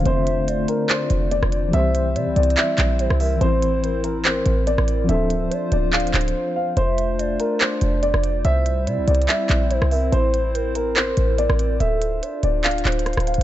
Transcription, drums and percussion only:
0.06 closed hi-hat medium
0.27 closed hi-hat medium
0.48 closed hi-hat medium
0.68 closed hi-hat medium
0.89 clap loud
0.89 closed hi-hat medium
1.10 closed hi-hat medium
1.31 closed hi-hat medium
1.43 cross-stick loud
1.52 closed hi-hat medium
1.73 closed hi-hat medium
1.95 closed hi-hat medium
2.16 closed hi-hat medium
2.36 closed hi-hat medium
2.43 closed hi-hat medium
2.50 closed hi-hat medium
2.57 clap loud
2.57 closed hi-hat medium
2.78 clap medium
2.78 closed hi-hat medium
2.99 closed hi-hat medium
3.10 cross-stick loud
3.20 open hi-hat medium
3.41 closed hi-hat medium
3.62 closed hi-hat medium
3.84 closed hi-hat medium
4.04 closed hi-hat medium
4.25 clap loud
4.25 closed hi-hat medium
4.46 closed hi-hat medium
4.67 closed hi-hat medium
4.78 cross-stick loud
4.88 closed hi-hat medium
5.09 closed hi-hat medium
5.30 closed hi-hat medium
5.52 closed hi-hat medium
5.72 closed hi-hat medium
5.93 clap loud
5.93 closed hi-hat medium
6.00 closed hi-hat medium
6.07 closed hi-hat medium
6.14 clap medium
6.14 closed hi-hat medium
6.21 closed hi-hat medium
6.28 closed hi-hat medium
6.77 closed hi-hat medium
6.98 closed hi-hat medium
7.19 closed hi-hat medium
7.40 closed hi-hat medium
7.61 clap loud
7.61 closed hi-hat medium
7.81 closed hi-hat medium
8.03 closed hi-hat medium
8.14 cross-stick loud
8.24 closed hi-hat medium
8.45 closed hi-hat medium
8.66 closed hi-hat medium
8.87 closed hi-hat medium
9.08 closed hi-hat medium
9.15 closed hi-hat medium
9.22 closed hi-hat medium
9.29 clap loud
9.29 closed hi-hat medium
9.49 clap medium
9.49 closed hi-hat medium
9.71 closed hi-hat medium
9.82 cross-stick loud
9.91 open hi-hat medium
10.13 closed hi-hat medium
10.34 closed hi-hat medium
10.55 closed hi-hat medium
10.75 closed hi-hat medium
10.96 clap loud
10.96 closed hi-hat medium
11.17 closed hi-hat medium
11.38 closed hi-hat medium
11.50 cross-stick loud
11.59 closed hi-hat medium
11.80 closed hi-hat medium
12.02 closed hi-hat medium
12.23 closed hi-hat medium
12.43 closed hi-hat medium
12.64 clap loud
12.64 closed hi-hat medium
12.71 closed hi-hat medium
12.78 closed hi-hat medium
12.85 clap medium
12.85 closed hi-hat medium
12.92 closed hi-hat medium
12.99 closed hi-hat medium
13.06 cross-stick medium
13.06 closed hi-hat soft
13.13 closed hi-hat soft
13.17 cross-stick loud
13.17 closed hi-hat medium
13.27 closed hi-hat medium
13.27 open hi-hat medium
13.34 closed hi-hat medium

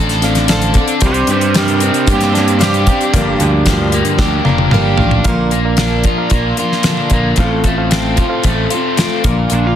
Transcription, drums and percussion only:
0.09 snare soft
0.09 closed hi-hat soft
0.22 snare soft
0.22 closed hi-hat medium
0.35 snare soft
0.35 closed hi-hat medium
0.48 snare loud
0.48 closed hi-hat loud
0.62 closed hi-hat medium
0.74 kick medium
0.74 closed hi-hat medium
0.88 closed hi-hat soft
1.01 kick loud
1.01 closed hi-hat loud
1.14 closed hi-hat medium
1.27 closed hi-hat medium
1.41 closed hi-hat soft
1.54 snare loud
1.54 closed hi-hat loud
1.68 closed hi-hat soft
1.80 closed hi-hat medium
1.94 closed hi-hat soft
2.07 kick loud
2.07 closed hi-hat loud
2.21 snare soft
2.21 closed hi-hat soft
2.35 snare soft
2.35 closed hi-hat medium
2.48 closed hi-hat medium
2.61 snare loud
2.61 closed hi-hat loud
2.74 closed hi-hat soft
2.87 kick medium
2.87 closed hi-hat medium
3.01 closed hi-hat soft
3.14 kick loud
3.14 closed hi-hat loud
3.40 closed hi-hat medium
3.66 kick medium
3.66 snare loud
3.66 closed hi-hat medium
3.92 closed hi-hat medium
4.05 closed hi-hat soft
4.18 kick loud
4.18 snare medium
4.45 high tom medium
4.58 high tom medium
4.71 mid tom loud
4.98 floor tom medium
5.11 floor tom medium
5.24 kick loud
5.24 closed hi-hat medium
5.51 closed hi-hat medium
5.77 snare loud
5.77 closed hi-hat medium
6.04 kick medium
6.04 closed hi-hat medium
6.30 kick loud
6.30 closed hi-hat medium
6.57 closed hi-hat medium
6.72 snare soft
6.83 snare loud
6.83 closed hi-hat medium
7.10 kick medium
7.10 closed hi-hat medium
7.36 kick loud
7.36 closed hi-hat medium
7.64 kick medium
7.64 closed hi-hat medium
7.91 snare loud
7.91 closed hi-hat medium
8.17 kick medium
8.17 closed hi-hat medium
8.44 kick loud
8.44 closed hi-hat medium
8.70 closed hi-hat medium
8.97 snare loud
8.97 closed hi-hat loud
9.24 kick medium
9.24 closed hi-hat medium
9.50 closed hi-hat medium

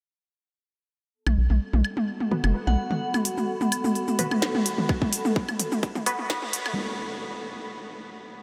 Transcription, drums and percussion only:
1.27 high tom medium
1.27 high woodblock medium
1.50 high tom soft
1.73 high tom medium
1.84 high woodblock medium
1.97 high tom medium
2.20 high tom soft
2.31 mid tom medium
2.44 high tom medium
2.44 high woodblock medium
2.67 high tom medium
2.91 mid tom medium
2.91 high tom soft
3.14 high tom medium
3.14 cabasa soft
3.14 high woodblock medium
3.25 open hi-hat medium
3.38 high tom soft
3.38 cabasa soft
3.61 high tom medium
3.61 cabasa soft
3.72 open hi-hat medium
3.72 high woodblock medium
3.84 high tom medium
3.84 cabasa soft
3.95 open hi-hat soft
4.08 high tom soft
4.08 cabasa soft
4.19 open hi-hat medium
4.19 mid tom loud
4.31 high tom medium
4.31 high woodblock medium
4.42 snare loud
4.55 high tom medium
4.66 open hi-hat loud
4.78 mid tom medium
4.78 high tom soft
4.89 kick loud
4.89 high woodblock medium
5.02 kick medium
5.02 high tom medium
5.13 open hi-hat loud
5.25 high tom medium
5.25 cabasa soft
5.36 kick loud
5.49 high tom soft
5.49 cabasa soft
5.49 high woodblock medium
5.59 open hi-hat medium
5.59 mid tom medium
5.72 high tom medium
5.72 cabasa soft
5.83 kick loud
5.83 open hi-hat soft
5.95 mid tom loud
5.95 high tom medium
5.95 cabasa soft
6.06 open hi-hat loud
6.06 high woodblock medium
6.19 high tom soft
6.30 kick loud
6.30 snare loud
6.30 cabasa soft
6.42 high tom medium
6.53 open hi-hat loud
6.53 cabasa soft
6.66 high tom medium
6.66 high woodblock medium

